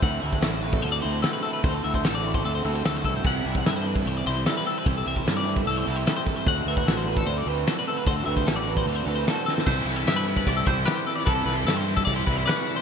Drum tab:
CC |----------------|----------------|x---------------|----------------|
HH |o-o-o-o-o-o-o-o-|o-o-o-o-o-o-o-o-|--o-o-o-o-o-o-o-|o-o-o-o-o-o-o-o-|
SD |----o-------oo--|----o-------oo--|----o-------oo--|----o-------oo--|
BD |o--o---o--------|o--o---o------o-|o--o---o--------|o--o---o------o-|

CC |----------------|----------------|x-x-x-x-x-x-x-x-|x-x-x-x-x-x-x-x-|
HH |o-o-o-o-o-o-o-o-|o-o-o-o-o-o-o---|----------------|----------------|
SD |----o-------oo--|----o-------oooo|--o-o-------o--o|--o-o-------o---|
BD |o--o---o--------|o--o---o--------|o------oo-o-----|o------oo-o-----|